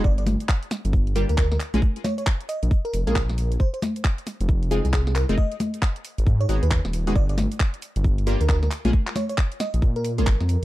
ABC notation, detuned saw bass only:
X:1
M:4/4
L:1/16
Q:"Swing 16ths" 1/4=135
K:Bbdor
V:1 name="Detuned saw bass" clef=bass
G,,,3 z4 G,,,4 =D,,3 z B,,, | z6 z B,,, z2 F,,, B,,,4- B,,, | z6 z F,,,4 C,,4 F,,, | z6 z A,,, A,,2 A,,, E,,2 E,,,3 |
G,,,3 z4 G,,,4 =D,,3 z B,,, | z6 z B,,, B,,3 A,,,2 F,,2 z |]